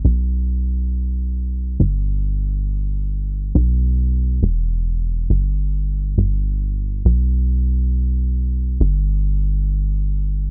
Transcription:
0, 0, Header, 1, 2, 480
1, 0, Start_track
1, 0, Tempo, 500000
1, 10084, End_track
2, 0, Start_track
2, 0, Title_t, "Analog synth bass"
2, 0, Program_c, 0, 38
2, 43, Note_on_c, 0, 35, 84
2, 1704, Note_off_c, 0, 35, 0
2, 1725, Note_on_c, 0, 31, 85
2, 3386, Note_off_c, 0, 31, 0
2, 3407, Note_on_c, 0, 35, 88
2, 4227, Note_off_c, 0, 35, 0
2, 4247, Note_on_c, 0, 28, 87
2, 5067, Note_off_c, 0, 28, 0
2, 5087, Note_on_c, 0, 31, 83
2, 5908, Note_off_c, 0, 31, 0
2, 5929, Note_on_c, 0, 31, 88
2, 6749, Note_off_c, 0, 31, 0
2, 6770, Note_on_c, 0, 35, 88
2, 8431, Note_off_c, 0, 35, 0
2, 8451, Note_on_c, 0, 31, 85
2, 10084, Note_off_c, 0, 31, 0
2, 10084, End_track
0, 0, End_of_file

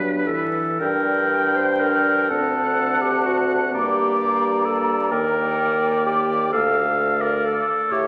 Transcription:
0, 0, Header, 1, 6, 480
1, 0, Start_track
1, 0, Key_signature, -2, "minor"
1, 0, Tempo, 1136364
1, 341, Time_signature, 6, 3, 24, 8
1, 341, Tempo, 990099
1, 1301, Tempo, 931677
1, 4024, End_track
2, 0, Start_track
2, 0, Title_t, "Flute"
2, 0, Program_c, 0, 73
2, 340, Note_on_c, 0, 79, 52
2, 1066, Note_on_c, 0, 81, 57
2, 1073, Note_off_c, 0, 79, 0
2, 1785, Note_off_c, 0, 81, 0
2, 1788, Note_on_c, 0, 82, 55
2, 2502, Note_on_c, 0, 79, 61
2, 2510, Note_off_c, 0, 82, 0
2, 3223, Note_off_c, 0, 79, 0
2, 3226, Note_on_c, 0, 77, 57
2, 3795, Note_off_c, 0, 77, 0
2, 3942, Note_on_c, 0, 76, 58
2, 4024, Note_off_c, 0, 76, 0
2, 4024, End_track
3, 0, Start_track
3, 0, Title_t, "Oboe"
3, 0, Program_c, 1, 68
3, 0, Note_on_c, 1, 71, 38
3, 182, Note_off_c, 1, 71, 0
3, 343, Note_on_c, 1, 79, 44
3, 1068, Note_on_c, 1, 78, 44
3, 1075, Note_off_c, 1, 79, 0
3, 1788, Note_off_c, 1, 78, 0
3, 1793, Note_on_c, 1, 74, 44
3, 2490, Note_off_c, 1, 74, 0
3, 2504, Note_on_c, 1, 74, 47
3, 3212, Note_off_c, 1, 74, 0
3, 3229, Note_on_c, 1, 77, 49
3, 3580, Note_on_c, 1, 74, 44
3, 3588, Note_off_c, 1, 77, 0
3, 3815, Note_off_c, 1, 74, 0
3, 3940, Note_on_c, 1, 73, 53
3, 4024, Note_off_c, 1, 73, 0
3, 4024, End_track
4, 0, Start_track
4, 0, Title_t, "Clarinet"
4, 0, Program_c, 2, 71
4, 0, Note_on_c, 2, 62, 31
4, 106, Note_off_c, 2, 62, 0
4, 109, Note_on_c, 2, 69, 47
4, 337, Note_on_c, 2, 70, 55
4, 343, Note_off_c, 2, 69, 0
4, 703, Note_on_c, 2, 72, 52
4, 710, Note_off_c, 2, 70, 0
4, 822, Note_on_c, 2, 70, 56
4, 829, Note_off_c, 2, 72, 0
4, 1062, Note_on_c, 2, 69, 58
4, 1069, Note_off_c, 2, 70, 0
4, 1417, Note_on_c, 2, 67, 51
4, 1425, Note_off_c, 2, 69, 0
4, 1542, Note_on_c, 2, 66, 52
4, 1550, Note_off_c, 2, 67, 0
4, 1710, Note_off_c, 2, 66, 0
4, 1781, Note_on_c, 2, 67, 67
4, 2259, Note_on_c, 2, 69, 59
4, 2266, Note_off_c, 2, 67, 0
4, 2496, Note_off_c, 2, 69, 0
4, 2499, Note_on_c, 2, 70, 65
4, 2975, Note_off_c, 2, 70, 0
4, 2988, Note_on_c, 2, 67, 59
4, 3222, Note_off_c, 2, 67, 0
4, 3224, Note_on_c, 2, 69, 69
4, 3580, Note_on_c, 2, 70, 60
4, 3588, Note_off_c, 2, 69, 0
4, 3706, Note_on_c, 2, 69, 70
4, 3714, Note_off_c, 2, 70, 0
4, 3944, Note_on_c, 2, 67, 64
4, 3952, Note_off_c, 2, 69, 0
4, 4024, Note_off_c, 2, 67, 0
4, 4024, End_track
5, 0, Start_track
5, 0, Title_t, "French horn"
5, 0, Program_c, 3, 60
5, 0, Note_on_c, 3, 54, 38
5, 110, Note_on_c, 3, 52, 37
5, 117, Note_off_c, 3, 54, 0
5, 340, Note_off_c, 3, 52, 0
5, 343, Note_on_c, 3, 62, 45
5, 1067, Note_on_c, 3, 60, 47
5, 1074, Note_off_c, 3, 62, 0
5, 1783, Note_off_c, 3, 60, 0
5, 1786, Note_on_c, 3, 58, 45
5, 2415, Note_off_c, 3, 58, 0
5, 2502, Note_on_c, 3, 58, 50
5, 3211, Note_off_c, 3, 58, 0
5, 3225, Note_on_c, 3, 57, 49
5, 3795, Note_off_c, 3, 57, 0
5, 3938, Note_on_c, 3, 57, 56
5, 4024, Note_off_c, 3, 57, 0
5, 4024, End_track
6, 0, Start_track
6, 0, Title_t, "Bassoon"
6, 0, Program_c, 4, 70
6, 0, Note_on_c, 4, 43, 39
6, 197, Note_off_c, 4, 43, 0
6, 339, Note_on_c, 4, 43, 46
6, 1046, Note_off_c, 4, 43, 0
6, 1069, Note_on_c, 4, 38, 42
6, 1774, Note_off_c, 4, 38, 0
6, 1787, Note_on_c, 4, 43, 45
6, 2503, Note_on_c, 4, 39, 43
6, 2511, Note_off_c, 4, 43, 0
6, 3223, Note_on_c, 4, 38, 49
6, 3230, Note_off_c, 4, 39, 0
6, 3805, Note_off_c, 4, 38, 0
6, 3943, Note_on_c, 4, 45, 52
6, 4024, Note_off_c, 4, 45, 0
6, 4024, End_track
0, 0, End_of_file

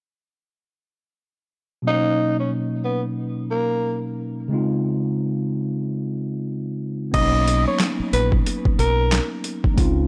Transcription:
0, 0, Header, 1, 6, 480
1, 0, Start_track
1, 0, Tempo, 659341
1, 1356, Time_signature, 4, 2, 24, 8
1, 7334, End_track
2, 0, Start_track
2, 0, Title_t, "Tenor saxophone"
2, 0, Program_c, 0, 66
2, 1362, Note_on_c, 0, 63, 112
2, 1718, Note_off_c, 0, 63, 0
2, 1743, Note_on_c, 0, 61, 69
2, 1829, Note_off_c, 0, 61, 0
2, 2071, Note_on_c, 0, 59, 79
2, 2200, Note_off_c, 0, 59, 0
2, 2555, Note_on_c, 0, 58, 81
2, 2914, Note_off_c, 0, 58, 0
2, 5198, Note_on_c, 0, 75, 114
2, 5556, Note_off_c, 0, 75, 0
2, 5587, Note_on_c, 0, 73, 82
2, 5671, Note_off_c, 0, 73, 0
2, 5920, Note_on_c, 0, 71, 88
2, 6045, Note_off_c, 0, 71, 0
2, 6400, Note_on_c, 0, 70, 86
2, 6756, Note_off_c, 0, 70, 0
2, 7334, End_track
3, 0, Start_track
3, 0, Title_t, "Tine electric piano"
3, 0, Program_c, 1, 4
3, 1327, Note_on_c, 1, 47, 68
3, 1337, Note_on_c, 1, 54, 54
3, 1348, Note_on_c, 1, 58, 60
3, 1359, Note_on_c, 1, 61, 55
3, 1370, Note_on_c, 1, 63, 71
3, 1490, Control_c, 1, 64, 127
3, 3232, Note_off_c, 1, 47, 0
3, 3237, Note_off_c, 1, 54, 0
3, 3243, Note_off_c, 1, 58, 0
3, 3248, Note_off_c, 1, 61, 0
3, 3254, Note_off_c, 1, 63, 0
3, 3263, Note_on_c, 1, 49, 80
3, 3273, Note_on_c, 1, 56, 77
3, 3284, Note_on_c, 1, 60, 70
3, 3286, Control_c, 1, 64, 0
3, 3295, Note_on_c, 1, 63, 71
3, 3306, Note_on_c, 1, 65, 85
3, 3426, Control_c, 1, 64, 127
3, 5160, Note_off_c, 1, 49, 0
3, 5166, Note_off_c, 1, 56, 0
3, 5171, Note_off_c, 1, 60, 0
3, 5176, Note_off_c, 1, 63, 0
3, 5180, Note_on_c, 1, 59, 71
3, 5182, Note_off_c, 1, 65, 0
3, 5190, Note_on_c, 1, 54, 61
3, 5201, Note_on_c, 1, 58, 61
3, 5205, Control_c, 1, 64, 0
3, 5212, Note_on_c, 1, 61, 64
3, 5223, Note_on_c, 1, 63, 75
3, 5319, Control_c, 1, 64, 127
3, 7079, Note_off_c, 1, 59, 0
3, 7084, Note_off_c, 1, 54, 0
3, 7084, Note_off_c, 1, 61, 0
3, 7090, Note_off_c, 1, 58, 0
3, 7093, Note_on_c, 1, 61, 75
3, 7100, Note_off_c, 1, 63, 0
3, 7104, Note_on_c, 1, 56, 79
3, 7115, Note_on_c, 1, 60, 79
3, 7124, Control_c, 1, 64, 0
3, 7125, Note_on_c, 1, 63, 76
3, 7136, Note_on_c, 1, 65, 89
3, 7230, Control_c, 1, 64, 127
3, 7334, Note_off_c, 1, 56, 0
3, 7334, Note_off_c, 1, 60, 0
3, 7334, Note_off_c, 1, 61, 0
3, 7334, Note_off_c, 1, 63, 0
3, 7334, Note_off_c, 1, 65, 0
3, 7334, End_track
4, 0, Start_track
4, 0, Title_t, "Fingered electric bass"
4, 0, Program_c, 2, 33
4, 5200, Note_on_c, 2, 35, 115
4, 5567, Note_off_c, 2, 35, 0
4, 5920, Note_on_c, 2, 34, 97
4, 6103, Note_off_c, 2, 34, 0
4, 6398, Note_on_c, 2, 35, 92
4, 6690, Note_off_c, 2, 35, 0
4, 7119, Note_on_c, 2, 37, 107
4, 7334, Note_off_c, 2, 37, 0
4, 7334, End_track
5, 0, Start_track
5, 0, Title_t, "Muted fingered electric bass strokes"
5, 5822, Note_on_c, 9, 29, 47
5, 5895, Note_off_c, 9, 29, 0
5, 7334, End_track
6, 0, Start_track
6, 0, Title_t, "Drums"
6, 5196, Note_on_c, 9, 49, 93
6, 5197, Note_on_c, 9, 36, 110
6, 5199, Note_on_c, 9, 42, 79
6, 5269, Note_off_c, 9, 49, 0
6, 5270, Note_off_c, 9, 36, 0
6, 5272, Note_off_c, 9, 42, 0
6, 5442, Note_on_c, 9, 42, 83
6, 5515, Note_off_c, 9, 42, 0
6, 5675, Note_on_c, 9, 39, 94
6, 5676, Note_on_c, 9, 38, 121
6, 5681, Note_on_c, 9, 42, 105
6, 5748, Note_off_c, 9, 39, 0
6, 5749, Note_off_c, 9, 38, 0
6, 5754, Note_off_c, 9, 42, 0
6, 5920, Note_on_c, 9, 42, 88
6, 5993, Note_off_c, 9, 42, 0
6, 6057, Note_on_c, 9, 36, 100
6, 6130, Note_off_c, 9, 36, 0
6, 6162, Note_on_c, 9, 42, 99
6, 6235, Note_off_c, 9, 42, 0
6, 6300, Note_on_c, 9, 36, 95
6, 6372, Note_off_c, 9, 36, 0
6, 6400, Note_on_c, 9, 42, 77
6, 6473, Note_off_c, 9, 42, 0
6, 6640, Note_on_c, 9, 42, 83
6, 6642, Note_on_c, 9, 38, 118
6, 6642, Note_on_c, 9, 39, 98
6, 6713, Note_off_c, 9, 42, 0
6, 6715, Note_off_c, 9, 38, 0
6, 6715, Note_off_c, 9, 39, 0
6, 6873, Note_on_c, 9, 42, 79
6, 6945, Note_off_c, 9, 42, 0
6, 7019, Note_on_c, 9, 36, 94
6, 7092, Note_off_c, 9, 36, 0
6, 7117, Note_on_c, 9, 36, 112
6, 7118, Note_on_c, 9, 42, 82
6, 7190, Note_off_c, 9, 36, 0
6, 7191, Note_off_c, 9, 42, 0
6, 7334, End_track
0, 0, End_of_file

